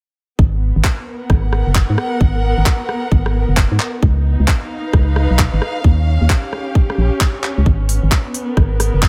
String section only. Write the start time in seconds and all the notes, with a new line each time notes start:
0.39 B3
0.92 A#4
1.19 F#5
4.03 D#4
4.44 F5
4.86 B4
5.84 C#4
6.24 G4
7.66 B3
8.44 A#4